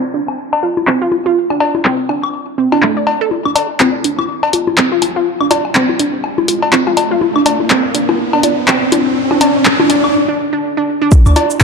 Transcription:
0.14 D4
0.28 high woodblock
0.53 cowbell
0.63 F4
0.77 low bongo
0.87 C4, clap, high woodblock
1.01 F4
1.12 low bongo
1.26 F4
1.50 D4, high woodblock
1.60 D5, cowbell
1.75 low bongo
1.85 C4, clap
2.09 D4, high woodblock
2.23 high woodblock
2.58 C4
2.72 D4, cowbell, low bongo, high woodblock
2.82 A3, clap
2.97 D5
3.07 cowbell
3.21 A4
3.31 riser, low bongo
3.45 D2 D4, high woodblock
3.56 D5, open hi-hat, cowbell
3.80 D2 C4, clap, low bongo, high woodblock
4.04 D2 D4, open hi-hat
4.19 D2, low bongo, high woodblock
4.43 cowbell, high woodblock
4.53 D2 F4, open hi-hat
4.67 F2, low bongo
4.78 C4, clap
4.92 F4
5.02 D2, open hi-hat, low bongo, high woodblock
5.16 F4
5.41 D2 D4, high woodblock
5.51 D5, open hi-hat, cowbell, low bongo
5.65 high woodblock
5.75 D2 C4, clap
5.89 low bongo
5.99 D2 D4, open hi-hat
6.14 D2
6.24 high woodblock
6.38 low bongo
6.48 D2 F4, open hi-hat
6.62 F2, cowbell
6.73 C4, clap, low bongo
6.87 F4, high woodblock
6.97 D2, open hi-hat, cowbell
7.11 F4
7.21 low bongo
7.36 D2 D4, high woodblock
7.46 D5, open hi-hat, cowbell, high woodblock
7.60 low bongo
7.70 D2 C4, clap
7.95 D2 D4, open hi-hat
8.09 D2, low bongo, high woodblock
8.33 D4, cowbell
8.43 D2 D5, open hi-hat, low bongo
8.58 F2
8.68 C4, clap, high woodblock
8.92 D2 D4, open hi-hat, low bongo
9.31 D2 D4, low bongo, high woodblock
9.41 D5, open hi-hat, cowbell
9.65 D2, clap
9.80 D4, low bongo
9.90 D2 D5, open hi-hat, high woodblock
10.04 D2, high woodblock
10.28 D4
10.53 D4
10.77 D4
11.02 D4
11.12 kick, low bongo, cabasa
11.26 D2 D4, cabasa, high woodblock
11.36 D5, open hi-hat, cowbell, low bongo
11.50 cabasa
11.60 D2 C4, kick, clap, cabasa, high woodblock

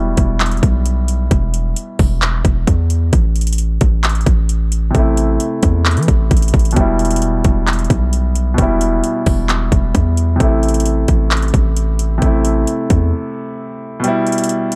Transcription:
Already playing: E1 B2 G3 E4
0.17 E1, kick, closed hi-hat
0.40 clap, closed hi-hat
0.46 closed hi-hat
0.52 closed hi-hat
0.57 closed hi-hat
0.63 B1, kick, closed hi-hat
0.86 closed hi-hat
1.08 closed hi-hat
1.31 E1, kick, closed hi-hat
1.54 closed hi-hat
1.76 closed hi-hat
1.99 E1, kick, open hi-hat
2.22 clap, closed hi-hat
2.45 E1, kick, closed hi-hat
2.67 E2, kick, closed hi-hat
2.90 closed hi-hat
3.13 A1, kick, closed hi-hat
3.36 closed hi-hat
3.41 closed hi-hat
3.47 closed hi-hat
3.53 closed hi-hat
3.58 closed hi-hat
3.81 A1, kick, closed hi-hat
4.04 clap, closed hi-hat
4.09 closed hi-hat
4.15 closed hi-hat
4.21 closed hi-hat
4.26 A1, kick, closed hi-hat
4.49 closed hi-hat
4.72 closed hi-hat
4.91 C3, closed hi-hat
4.95 A1 A3, kick
4.99 E4
5.17 closed hi-hat
5.40 closed hi-hat
5.63 E2, kick, closed hi-hat
5.86 clap, closed hi-hat
5.91 closed hi-hat
5.97 E3, closed hi-hat
6.03 closed hi-hat
6.08 A1, kick, closed hi-hat
6.31 A1, kick, closed hi-hat
6.37 closed hi-hat
6.42 closed hi-hat
6.48 closed hi-hat
6.54 A1, kick, closed hi-hat
6.59 closed hi-hat
6.65 closed hi-hat
6.71 B2, closed hi-hat
6.76 E1 G3, kick, closed hi-hat
6.80 E4
6.99 closed hi-hat
7.05 closed hi-hat
7.11 closed hi-hat
7.16 closed hi-hat
7.22 closed hi-hat
7.44 E1, kick, closed hi-hat
7.67 clap, closed hi-hat
7.73 closed hi-hat
7.79 closed hi-hat
7.84 closed hi-hat
7.90 B1, kick, closed hi-hat
8.13 closed hi-hat
8.35 closed hi-hat
8.54 B2, closed hi-hat
8.58 E1 G3 E4, kick
8.81 closed hi-hat
9.04 closed hi-hat
9.26 E1, kick, open hi-hat
9.49 clap, closed hi-hat
9.72 E1, kick, closed hi-hat
9.95 E2, kick, closed hi-hat
10.17 closed hi-hat
10.36 C3
10.40 A1 A3 E4, kick, closed hi-hat
10.63 closed hi-hat
10.69 closed hi-hat
10.74 closed hi-hat
10.80 closed hi-hat
10.86 closed hi-hat
11.08 A1, kick, closed hi-hat
11.31 clap, closed hi-hat
11.37 closed hi-hat
11.42 closed hi-hat
11.48 closed hi-hat
11.54 A1, kick, closed hi-hat
11.77 closed hi-hat
11.99 closed hi-hat
12.18 C3 A3
12.22 A1 E4, kick, closed hi-hat
12.45 closed hi-hat
12.67 closed hi-hat
12.90 E2, kick, closed hi-hat
14.00 B2 G3
14.04 E4, closed hi-hat
14.27 closed hi-hat
14.32 closed hi-hat
14.38 closed hi-hat
14.44 closed hi-hat
14.49 closed hi-hat
14.72 closed hi-hat

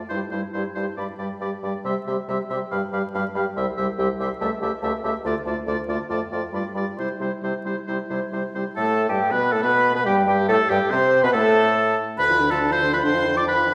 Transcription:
0.09 G2 G3 E4 C5 C6
0.31 G2 G3 E4 C5 C6
0.53 G2 G3 E4 C5 C6
0.75 G2 G3 E4 C5 C6
0.97 G2 G3 G4 D5 B5
1.19 G2 G3 G4 D5 B5
1.41 G2 G3 G4 D5 B5
1.63 G2 G3 G4 D5 B5
1.85 C3 G3 G4 E5 C6
2.07 C3 G3 G4 E5 C6
2.28 C3 G3 G4 E5 C6
2.50 C3 G3 G4 E5 C6
2.71 G2 G3 G4 F5 B5
2.92 G2 G3 G4 F5 B5
3.14 G2 G3 G4 F5 B5
3.34 G2 G3 G4 F5 B5
3.56 C2 G3 G4 E5 C6
3.77 C2 G3 G4 E5 C6
3.98 C2 G3 G4 E5 C6
4.19 C2 G3 G4 E5 C6
4.40 C#2 A3 G4 E5 A5
4.61 C#2 A3 G4 E5 A5
4.82 C#2 A3 G4 E5 A5
5.03 C#2 A3 G4 E5 A5
5.24 D2 A3 F4 D5 A5
5.45 D2 A3 F4 D5 A5
5.66 D2 A3 F4 D5 A5
5.88 D2 A3 F4 D5 A5
6.09 F2 A3 F4 D5 A5
6.31 F2 A3 F4 D5 A5
6.53 G2 G3 F4 D5 B5
6.74 G2 G3 F4 D5 B5
6.97 C3 G3 E4 C5 C6
7.19 C3 G3 E4 C5 C6
7.42 C3 G3 E4 C5 C6
7.64 C3 G3 E4 C5 C6
7.87 C3 G3 E4 C5 C6
8.10 C3 G3 E4 C5 C6
8.31 C3 G3 E4 C5 C6
8.55 C3 G3 E4 C5 C6
8.76 A2 A3 A4 A5
9.09 G2 G3 G4 G5
9.30 B2 B3 B4 B5
9.52 A2 A3 A4 A5
9.62 B2 B3 B4 B5
9.95 B2 B3 B4 B5
10.05 G2 G3 G4 G5
10.26 G2 G3 G4 G5
10.49 A2 A3 A4 A5
10.69 G2 G3 G4 G5
10.91 C3 C4 C5 C6
11.23 B2 B3 B4 B5
11.33 A2 A3 A4 A5
12.18 D2 D3 D4 B4 B5
12.29 F3 F4
12.40 D3 D4
12.51 F3 F4 A4 A5
12.60 D3 D4
12.71 F3 F4 C5 C6
12.83 D3 D4
12.93 F3 F4 B4 B5
13.03 F2 D3 D4 C5 C6
13.15 F3 F4
13.25 D3 D4
13.36 F3 F4 D5 D6
13.46 D3 D4 B4 B5
13.57 F3 F4
13.68 D3 D4

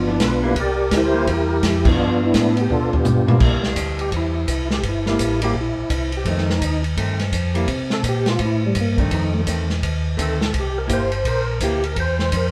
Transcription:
Already playing: G1 B3 D4
0.07 F3 B3 D4 E4
0.19 B1 D4 F4, kick, snare, hi-hat pedal, ride
0.24 B4
0.42 G3 A#3 E4
0.56 C2, kick, ride
0.60 G4 A#4 D5
0.91 D2, kick, snare, hi-hat pedal, ride
0.95 E4 G4 C5
1.14 G3 A#3 E4
1.26 E2 E4 G4, kick, ride
1.31 A#4
1.62 F2, kick, snare, hi-hat pedal, ride
1.67 G4
1.85 B3 D4, kick, crash
1.90 F4
1.98 G2 F3 B3 D4
2.24 B3 E4
2.33 A2, kick, snare, hi-hat pedal, ride
2.57 ride
2.61 G4
2.69 B2 D4 F4 A4, floor tom
2.93 B3 D4 G4, floor tom
3.04 G2, hi-hat pedal, mid tom
3.27 G3 A#3 E4, mid tom
3.40 C2 G3 A#3 E4, kick, crash
3.64 snare
3.76 D2, kick, hi-hat pedal, ride
3.99 G4, ride
4.12 E2, kick, ride
4.17 E4
4.47 C2, kick, hi-hat pedal, ride
4.71 G4, snare
4.83 G1, kick, ride
4.89 E4
5.06 G3 A#3 E4, snare
5.19 A1, kick, hi-hat pedal, ride
5.42 G3 A#3 E4 G4, ride
5.54 A#1, kick
5.61 E4
5.77 A#1
5.89 C2, kick, hi-hat pedal, ride
6.12 ride
6.17 G4
6.25 F2 D#3 A3 C4, kick, ride
6.30 D#4
6.38 snare
6.50 snare
6.61 D#2, kick, hi-hat pedal, ride
6.84 ride
6.97 G2 D#3 A3 C4, kick, ride
7.19 snare, ride
7.31 F2, kick, hi-hat pedal, ride
7.54 G3 A#3 E4, ride
7.68 C3, kick, ride
7.90 A4, snare
8.03 A#2, kick, hi-hat pedal, ride
8.09 G4
8.26 F4, snare, ride
8.39 A2, kick, ride
8.45 E4
8.66 G3
8.75 G2, kick, hi-hat pedal, ride
8.80 A#3
8.98 D#3 A3 C4 D4, kick, ride
9.10 F2, kick, ride
9.15 D#4
9.34 A3
9.46 E2 D#3 A3 C4, kick, hi-hat pedal, ride
9.70 snare
9.82 D#2, kick, ride
10.17 D2 D#3 A3 C4, kick, hi-hat pedal, ride
10.22 A4
10.41 snare
10.54 C2, kick, ride
10.59 G4
10.78 A#4
10.87 G1 A#3 E4 G4, kick, hi-hat pedal, ride
10.93 C5
11.12 ride
11.25 A#1 A#4, kick, ride
11.60 D2 A#3 E4 G4, kick, hi-hat pedal, ride
11.84 A#4, ride
11.96 E2, kick, ride
12.00 C5
12.19 snare
12.32 F2, kick, hi-hat pedal, ride
12.36 A#4

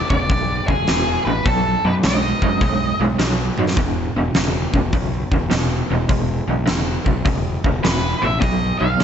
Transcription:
0.10 E1 E2 C#3 D5, kick
0.30 B1 E2 C#3, kick, open hi-hat
0.68 E1 E2 C#3 G#4, kick
0.87 E1 E2 B2, snare, open hi-hat
1.25 A1 E2 B2 B4
1.46 B1 B2 F#3 A4, kick, open hi-hat
1.84 F#2 B2 F#3 B4
2.03 B1 B2 G#3 D#5, snare, open hi-hat
2.42 F#2 B2 G#3, kick
2.61 B1 B2 G#3, kick, open hi-hat
3.00 B1 B2 G#3
3.19 B1 B2 F#3, snare, open hi-hat
3.58 F#2 B2 F#3, high tom
3.67 snare
3.77 E1 E2 B2, kick, open hi-hat
4.16 E1 E2 B2
4.34 E1 E2 C#3, snare, open hi-hat
4.73 E1 E2 C#3, kick
4.93 B1 E2 C#3, kick, open hi-hat
5.32 E1 E2 C#3, kick
5.51 E1 E2 B2, snare, open hi-hat
5.90 E1 E2 B2
6.09 E1 E2 B2, kick, open hi-hat
6.48 B1 E2 B2
6.66 E1 E2 C#3, snare, open hi-hat
7.05 B1 E2 C#3, kick
7.25 E1 E2 C#3, kick, open hi-hat
7.64 E1 E2 C#3, kick
7.83 E1 E2 B2 B4, snare, open hi-hat
8.22 A1 E2 B2 E5
8.40 B1 B2 F#3 D#5, kick, open hi-hat
8.79 B1 B2 F#3 F5
9.00 B1 B2 G#3, snare, open hi-hat

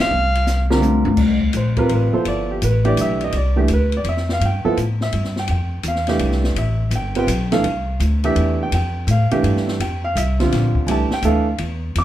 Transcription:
0.01 F5
0.11 C2
0.35 ride
0.47 snare, hi-hat pedal
0.70 D3 G3 C4 F4 A#4, snare
0.82 hi-hat pedal, high tom
1.05 G2, high tom
1.17 C2, kick, crash
1.41 kick
1.53 A#1 C5, hi-hat pedal, ride
1.77 G3 C4 F4 A#4 B4, kick, ride
1.89 A1 B4, ride
2.13 F3 B3 E4 A4 C5, muted upright bass stroke
2.25 G1 D5, ride
2.51 G4
2.62 A1 B4, hi-hat pedal, ride
2.84 E3 A3 D4 G4 D5, ride
2.97 B1, hi-hat pedal, ride
3.01 E5
3.21 D#5, ride
3.32 C2, ride
3.37 D5
3.56 E3 A3 D4 G4
3.61 G4
3.68 D2, hi-hat pedal, ride
3.73 B4
3.92 ride
3.97 D5
4.04 F2, ride
4.09 E5
4.17 snare
4.29 F5, snare
4.40 G2, ride
4.46 G5
4.64 F3 B3 E4 A4, muted upright bass stroke
4.77 A2, hi-hat pedal, ride
5.01 E5, snare
5.12 G2, ride
5.24 snare
5.36 G5, snare
5.48 F2 G5, ride
5.83 E2, hi-hat pedal, ride
5.88 F5
5.95 snare
6.07 E3 A3 D4 G4, snare, ride
6.19 C2, ride
6.31 snare
6.44 snare
6.55 A1 E5, ride
6.91 G1, hi-hat pedal, ride
6.95 G5
7.15 G3 C4 F4 B4 G5, ride
7.27 B1, hi-hat pedal, ride
7.52 E3 A3 D4 A4 F5, snare, ride
7.63 C2, ride
8.00 D2, hi-hat pedal, ride
8.24 E3 A3 D4 G4 E5, ride
8.35 E2, ride
8.63 G5
8.72 F2 G5, ride
9.07 A2, hi-hat pedal, ride
9.11 F5
9.31 E3 A3 D4 G4, muted upright bass stroke, ride
9.43 G2, ride
9.57 snare
9.68 snare
9.79 F2 G5, ride
10.04 F5
10.15 C2 E5, hi-hat pedal, ride
10.40 D3 G3 C4 F4, snare, ride
10.52 A#1, snare, ride
10.75 muted upright bass stroke, kick
10.87 C2 E3 A3 D4 G4 G#5, ride
10.91 A5
11.11 G5, snare
11.22 D2 E3 A3 D4 A4 F5, hi-hat pedal, ride
11.58 E2, ride
11.95 F2 D6, ride

